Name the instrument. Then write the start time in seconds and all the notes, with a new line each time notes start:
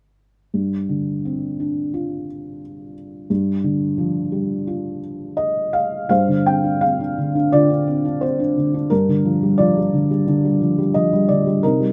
felt piano
0.54 G2
0.89 D3
1.25 C4
1.60 D4
1.94 F4
3.30 G2
3.64 D3
3.98 F3
4.32 G3
4.67 F4
5.37 D#5
5.73 F5
6.09 G2 C5 F5
6.28 D3
6.46 C4 G5
6.64 D4
6.81 C4 F5
7.00 D4
7.18 D3
7.35 D4
7.52 D3 F4 D5
7.70 D4
7.87 C4
8.05 D4
8.21 C4 C5
8.40 D4
8.57 D3
8.74 D4
8.90 G2 D4 A#4
9.09 D3
9.25 F3
9.43 G3
9.58 F3 F4 D5
9.78 G3
9.94 D3
10.11 G3
10.27 D3
10.45 G3
10.62 F3
10.78 G3
10.94 F3 D#5
11.13 G3
11.28 D3 D5
11.47 G3
11.63 C3 D#4 A#4
11.80 G3